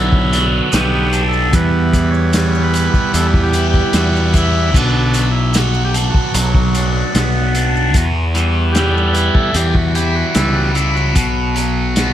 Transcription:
Already playing: B1 B2 D3 F#3 B3 D4 E4 F#4
0.13 kick
0.33 D4, snare, closed hi-hat, maracas
0.46 F#4
0.72 B1 D3 B3 G4, snare, closed hi-hat, maracas
1.13 D4, closed hi-hat, maracas
1.28 A4
1.33 maracas
1.53 E2 E3 G3 B3 B4, kick, closed hi-hat, maracas
1.93 E3, kick, closed hi-hat, maracas
2.10 C#5
2.14 maracas
2.33 G3, snare, closed hi-hat, maracas
2.55 maracas
2.64 B4
2.74 E4, closed hi-hat, maracas
2.94 kick, maracas
3.14 E2 E3 A4, closed hi-hat, maracas
3.34 kick
3.43 G4
3.53 E4, closed hi-hat, maracas
3.70 G4, kick, maracas
3.93 E2 G3 F#4, snare, closed hi-hat, maracas
4.16 maracas
4.34 E4, kick, closed hi-hat, maracas
4.38 E4
4.74 B1 B2 D3 F#3 B3, kick, crash, maracas
4.79 D4
5.14 F#3, closed hi-hat, maracas
5.31 E4
5.54 B3 F#4, snare, closed hi-hat, maracas
5.74 maracas
5.84 G4
5.94 D4, closed hi-hat, maracas
6.10 F#4
6.14 kick
6.34 B1 F#3, closed hi-hat, maracas
6.55 kick
6.75 D4, closed hi-hat, maracas
7.15 B1 B3, snare, closed hi-hat, maracas
7.55 D4, closed hi-hat, maracas
7.76 maracas
7.94 E2, kick, closed hi-hat, maracas
8.34 E3 G3 B3, closed hi-hat, maracas
8.73 G4, snare, closed hi-hat, maracas
8.77 G3
8.93 A4
8.97 maracas
9.13 E4 B4, closed hi-hat, maracas
9.34 A4, kick
9.54 E2 E3 G4, closed hi-hat, maracas
9.75 F#4, kick
9.95 E4 G4, closed hi-hat, maracas
10.16 F#4
10.35 C#2 E3 G3 B3 E4, snare, closed hi-hat, maracas
10.56 F#4
10.75 E4, closed hi-hat, maracas
10.95 F#4, maracas
11.15 B1 B2, kick, closed hi-hat, maracas
11.56 F#3, closed hi-hat, maracas
11.96 B3, snare, closed hi-hat, maracas

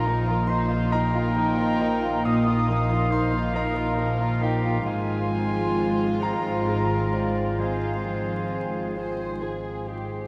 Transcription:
Already playing: A#1 A#2 A#3 D#4 A#4 D#5 A#5
0.05 F3 A#3 D#4
0.26 D#3 D#4 F4
0.47 F3 A#3 D#4 C5 D#5 C6
0.69 D#3 D#4 F4
0.90 A#3 D#4 A#4 D#5 G5 A#5
0.94 F3
1.13 D#3 D#4 F4
1.34 F3 A#3 D#4 D#5
1.39 F3
1.58 D#3 D#4 F4
1.80 F3 A#3 D#4 F4 D#5
2.01 D#3 D#4 F4
2.24 A#2 F3 A#3 D#4 D#5 F5 D#6
2.47 D#3 D#4 F4
2.68 F3 A#3 D#4
2.90 D#3 D#4 F4
3.10 F3 A#3 D#4 C5 D#5 C6
3.31 D#3 D#4 F4
3.54 F3 A#3 D#4 A#4 D#5 A#5
3.75 D#3 D#4 F4
3.97 F3 A#3 D#4 D#5
4.20 D#3 D#4 F4
4.41 F3 A#3 D#4 F4 G4 D#5 G5
4.64 D#3 D#4 F4
4.85 G#1 G#2 G#3 C4 F4 F5 G#5
5.31 F3 C4
5.76 C4 F4 C5
6.22 F4 A#4 C5 F5 A#5
6.68 G#3 F4 D#5
7.13 F4 C5 D5
7.58 G#2 G#3 C4 F4 G#4 C5 G#5
8.05 F3 C4
8.51 C4 F4 C5
8.96 F4 C5
9.42 G#3 F4 G#4
9.87 F4 G4 G#4 C5

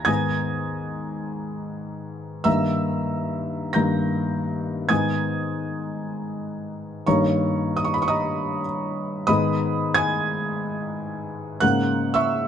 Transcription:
Already playing: G#5 A#5 A#6
0.05 G#2 D#3 B3 D#4 G#5 D#6 G#6
2.44 G2 D#3 A#3 D#4 E5 A#5 E6
3.73 G2 D#3 A#3 D#4 A#5 G6 A#6
4.89 G#2 D#3 B3 D#4 G#5 D#6 G#6
7.07 G2 D#3 A#3 D#4 C#5 A#5 C#6
7.77 D#6
7.84 C#6
7.94 B5
8.02 C#6
8.08 D#5 A#5 D#6
9.27 G#2 D#3 B3 G#4 D#5 B5 D#6
9.94 G#5 D#6 G#6
11.60 G#2 C#3 A#3 A#4 F#5 F#6
12.14 E5 C#6 E6

